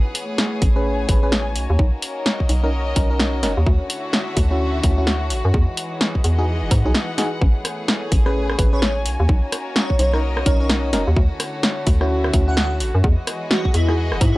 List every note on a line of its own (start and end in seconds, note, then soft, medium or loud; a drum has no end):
0.00 0.58 E3 medium
0.00 1.52 B3 medium
0.00 5.50 C#4 medium
0.00 1.54 E4 medium
0.00 1.52 G#4 medium
0.00 0.58 F#5 medium
0.12 6.30 C#5 medium
0.12 open hi-hat loud
0.22 1.56 A3 medium
0.35 2.34 G#5 medium
0.35 snare loud
0.62 1.06 A1 medium
0.62 kick loud
0.62 open hi-hat medium
0.76 1.06 C#4 medium
0.76 1.06 G#4 medium
0.76 1.06 B4 medium
1.09 1.57 A1 medium
1.09 1.20 C#4 medium
1.09 1.20 G#4 medium
1.09 1.20 B4 medium
1.09 kick loud
1.09 open hi-hat medium
1.23 1.34 C#4 medium
1.23 1.34 G#4 medium
1.23 1.34 B4 medium
1.32 snare loud
1.55 1.67 B1 loud
1.55 3.64 A#3 medium
1.55 3.64 D#4 medium
1.55 7.37 F#4 medium
1.55 open hi-hat medium
1.70 1.77 D#2 medium
1.79 1.91 B1 loud
1.79 kick loud
1.91 3.67 A#4 medium
2.02 open hi-hat loud
2.22 3.67 D#5 medium
2.26 snare loud
2.40 kick medium
2.49 2.94 B1 medium
2.49 open hi-hat medium
2.64 2.70 C#4 medium
2.64 2.70 D#4 medium
2.64 2.70 A#4 medium
2.96 3.45 B1 medium
2.96 3.08 C#4 medium
2.96 3.08 D#4 medium
2.96 3.08 A#4 loud
2.96 kick loud
2.96 open hi-hat loud
3.10 3.41 C#4 medium
3.10 3.41 D#4 medium
3.10 3.41 A#4 medium
3.20 snare loud
3.43 3.55 F#1 loud
3.43 3.53 C#4 medium
3.43 3.53 D#4 medium
3.43 3.53 A#4 loud
3.43 snare medium
3.43 open hi-hat medium
3.57 3.65 D#2 medium
3.66 3.78 D2 loud
3.66 5.54 D3 medium
3.66 5.52 A3 medium
3.66 5.52 E4 medium
3.66 kick loud
3.78 6.30 F#4 medium
3.90 open hi-hat loud
3.97 5.54 E5 medium
4.13 snare loud
4.37 4.81 D2 medium
4.37 kick loud
4.37 open hi-hat medium
4.51 4.81 C#4 medium
4.51 4.81 E4 medium
4.51 4.81 F#4 medium
4.83 5.32 D2 medium
4.83 4.95 C#4 medium
4.83 4.95 E4 medium
4.83 4.95 F#4 medium
4.83 kick medium
4.83 open hi-hat loud
4.98 5.09 C#4 medium
4.98 5.09 E4 medium
4.98 5.09 F#4 medium
5.07 snare loud
5.30 5.42 A1 loud
5.30 open hi-hat medium
5.45 5.52 F#2 medium
5.54 5.66 E2 loud
5.54 8.08 E3 medium
5.54 7.40 G#3 medium
5.54 9.02 B3 medium
5.54 7.40 D#4 medium
5.54 kick loud
5.77 open hi-hat loud
5.92 7.42 G#4 medium
6.01 snare loud
6.08 8.08 F#5 medium
6.14 7.42 D#5 medium
6.14 kick medium
6.24 6.64 E2 medium
6.24 open hi-hat medium
6.39 6.45 D#4 medium
6.39 6.45 F#4 medium
6.39 6.45 G#4 medium
6.62 6.70 E1 medium
6.71 6.83 G#2 medium
6.71 kick medium
6.71 open hi-hat loud
6.85 6.93 B1 medium
6.85 6.92 D#4 medium
6.85 6.92 F#4 medium
6.85 6.92 G#4 medium
6.95 snare loud
7.18 7.28 D#4 medium
7.18 7.28 F#4 medium
7.18 7.28 G#4 loud
7.18 snare medium
7.18 open hi-hat medium
7.41 7.53 A1 loud
7.41 13.00 C#4 medium
7.41 9.04 E4 medium
7.41 9.04 G#4 medium
7.41 kick loud
7.53 9.06 A3 medium
7.65 cross-stick medium
7.65 open hi-hat loud
7.83 13.80 C#5 medium
7.88 snare loud
8.07 9.92 G#5 medium
8.12 8.56 A1 medium
8.12 kick loud
8.12 open hi-hat medium
8.26 8.56 C#4 medium
8.26 8.56 G#4 medium
8.26 8.56 B4 medium
8.26 cross-stick medium
8.50 cross-stick medium
8.59 9.07 A1 medium
8.59 8.70 C#4 medium
8.59 8.70 G#4 medium
8.59 8.70 B4 medium
8.59 kick loud
8.59 open hi-hat loud
8.73 8.84 C#4 medium
8.73 8.84 G#4 medium
8.73 8.84 B4 medium
8.73 8.79 C#5 medium
8.82 8.91 C#5 medium
8.82 snare loud
9.06 9.17 B1 loud
9.06 11.14 A#3 medium
9.06 11.14 D#4 medium
9.06 13.00 F#4 medium
9.06 open hi-hat medium
9.20 9.27 D#2 medium
9.29 9.41 B1 medium
9.29 kick loud
9.45 11.16 A#4 medium
9.52 cross-stick medium
9.52 open hi-hat loud
9.76 9.94 C#5 medium
9.76 snare loud
9.90 kick medium
9.99 10.43 B1 medium
9.99 10.17 C#5 medium
9.99 11.16 D#5 medium
9.99 open hi-hat medium
10.13 10.20 C#4 medium
10.13 10.20 D#4 medium
10.13 10.20 A#4 medium
10.13 cross-stick medium
10.37 cross-stick medium
10.46 10.94 B1 medium
10.46 10.58 C#4 medium
10.46 10.58 D#4 medium
10.46 10.58 A#4 loud
10.46 10.55 C#5 medium
10.46 kick loud
10.46 open hi-hat loud
10.60 10.91 C#4 medium
10.60 10.91 D#4 medium
10.60 10.91 A#4 medium
10.60 10.66 C#5 medium
10.70 snare loud
10.93 11.05 F#1 loud
10.93 11.03 C#4 medium
10.93 11.03 D#4 medium
10.93 11.03 A#4 loud
10.93 snare medium
10.93 open hi-hat medium
11.07 11.15 D#2 medium
11.16 11.28 D2 loud
11.16 13.04 D3 medium
11.16 13.02 A3 medium
11.16 13.02 E4 medium
11.16 kick loud
11.34 13.80 F#4 medium
11.40 cross-stick medium
11.40 open hi-hat loud
11.63 snare loud
11.87 12.31 D2 medium
11.87 kick loud
11.87 open hi-hat medium
12.01 12.31 C#4 medium
12.01 12.31 E4 medium
12.01 12.31 F#4 medium
12.01 13.04 E5 medium
12.01 cross-stick medium
12.24 cross-stick medium
12.33 12.82 D2 medium
12.33 12.44 C#4 medium
12.33 12.44 E4 medium
12.33 12.44 F#4 medium
12.33 kick loud
12.33 open hi-hat loud
12.48 12.59 C#4 medium
12.48 12.59 E4 medium
12.48 12.59 F#4 medium
12.48 12.54 F#5 medium
12.57 12.66 F#5 medium
12.57 snare loud
12.80 12.92 A1 loud
12.80 open hi-hat medium
12.95 13.02 F#2 medium
13.04 13.16 E2 loud
13.04 14.38 E3 medium
13.04 14.38 G#3 medium
13.04 14.38 B3 medium
13.04 14.38 F#4 medium
13.04 14.38 D#5 medium
13.04 kick loud
13.21 14.38 G#4 medium
13.27 cross-stick medium
13.27 open hi-hat loud
13.41 14.38 F#5 medium
13.51 13.69 F#4 medium
13.51 snare loud
13.65 kick medium
13.70 14.38 D#5 medium
13.70 open hi-hat medium
13.74 14.13 E2 medium
13.74 13.92 E4 loud
13.88 13.95 D#4 medium
13.88 13.95 F#4 medium
13.88 13.95 G#4 medium
13.88 cross-stick medium
14.12 14.19 E1 medium
14.12 cross-stick medium
14.21 14.33 G#2 medium
14.21 14.38 E4 loud
14.21 kick loud
14.21 open hi-hat loud